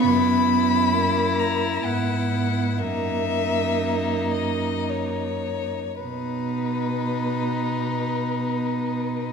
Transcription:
X:1
M:3/4
L:1/8
Q:1/4=56
K:B
V:1 name="Violin"
b3 a f2 | e3 d c2 | B6 |]
V:2 name="Violin"
E6 | D6 | D6 |]
V:3 name="Viola"
B,2 A,2 B,2 | A,6 | B,6 |]
V:4 name="Cello" clef=bass
F,,4 G,,2 | F,,6 | B,,6 |]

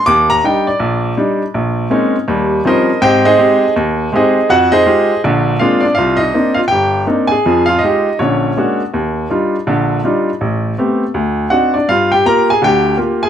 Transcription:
X:1
M:4/4
L:1/8
Q:"Swing" 1/4=162
K:Eb
V:1 name="Grand piano"
d' b g d3 z2 | z6 [Bce]2 | [Gceg] [EAce]3 z2 [EAce]2 | [_G_g] [EAce]3 z2 [Ff] [Dd] |
[K:Cm] [Ff] [Ee]2 [Ff] [Gg]2 z [Aa]- | [Aa] [Ff] [Ee]2 [^C^c]3 z | z8 | z6 ^f [Dd] |
[Ff] [Gg] [Bb] [Aa] [Gg]2 z [Aa] |]
V:2 name="Grand piano"
E,,2 [G,DE] z B,,,2 [G,DE] z | B,,,2 [A,B,C_DE] z [E,,G,]2 [F,G,CDE] z | [A,,C]2 [A,CG] z E,,2 [A,CG] z | F,,2 [A,EFG] z [B,,,D,]2 [A,B,CD] z |
[K:Cm] C,,2 [B,CDE] z G,,,2 [B,CDE] z | [F,,F,]2 [A,FG] z [B,,,D,]2 [A,B,D^F] z | E,,2 [G,DEF] z [B,,,D,]2 [G,DEF] z | =A,,,2 [=A,=B,CG] z D,,2 [CDE^F] z |
G,,2 [B,FG] z [D,,D,]2 [B,FG] z |]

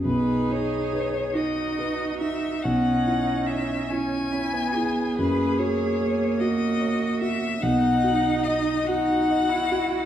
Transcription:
X:1
M:6/8
L:1/16
Q:3/8=48
K:B
V:1 name="Violin"
B2 c4 d4 e2 | f4 e2 g6 | B2 c4 d4 e2 | f4 d2 f6 |]
V:2 name="Cello"
G6 F6 | D6 C2 E2 G2- | G6 F6 | D6 F6 |]
V:3 name="Grand piano"
B,,,2 D2 B2 D2 B2 D2 | B,,,2 E2 c2 E2 c2 E2 | F,,2 F2 c2 F2 c2 F2 | B,,,2 F2 d2 F2 d2 F2 |]
V:4 name="Viola"
D6 D6 | C6 C3 B,3 | A,12 | D6 D3 E3 |]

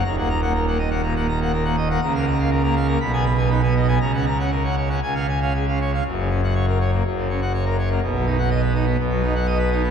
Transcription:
X:1
M:4/4
L:1/16
Q:1/4=121
K:F#
V:1 name="Pipe organ"
[D,,a] [A,f] a [A,f] A [A,f] d [A,f] [A,,a] [A,f] a [A,f] A [A,f] d [A,f] | [C,a] [A,e] a [A,e] A [A,a] e [A,a] [B,,b] [B,g] b [B,g] [DB] [B,g] d [B,g] | [C,a] [Cf] a [Cf] A [Cf] c [Cf] [C,g] [Ce] g [Ce] G [Ce] c [Ce] | F,, C, C f c A c A, F,, C, C f c A c A, |
B,, F, D f d B D B, B,, F, D f d B D B, |]
V:2 name="Pipe organ" clef=bass
D,,,16 | C,,8 B,,,8 | C,,8 C,,8 | F,,,8 F,,,8 |
B,,,8 B,,,8 |]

